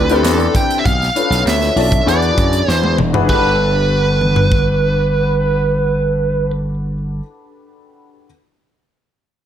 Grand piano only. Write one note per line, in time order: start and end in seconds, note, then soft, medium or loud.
0.00 0.10 C4 medium
0.00 0.10 D4 medium
0.00 0.10 E4 medium
0.00 0.10 G4 medium
0.00 0.11 B4 medium
0.00 0.86 D5 medium
0.10 0.85 C4 loud
0.10 0.86 D4 medium
0.10 0.86 E4 medium
0.10 0.86 G4 medium
0.10 0.86 B4 loud
1.15 1.63 C#4 medium
1.15 1.64 D4 medium
1.15 1.64 F4 medium
1.15 1.64 A4 medium
1.15 1.64 B4 medium
1.76 2.00 C#4 medium
1.76 2.00 D4 medium
1.76 2.01 F4 medium
1.76 2.01 A4 medium
1.76 2.01 D5 medium
2.05 2.91 D4 medium
2.05 2.91 E4 medium
2.05 2.91 F#4 medium
2.05 2.91 G#4 medium
2.05 2.13 A#4 medium
2.13 2.95 B4 medium
3.13 3.24 D4 medium
3.13 3.29 E4 medium
3.13 3.25 F#4 loud
3.13 3.29 G#4 medium
3.13 3.29 B4 loud
3.25 7.18 D4 medium
3.25 7.19 F#4 medium
3.25 7.20 G4 medium
3.29 7.20 A4 medium
3.29 7.21 B4 loud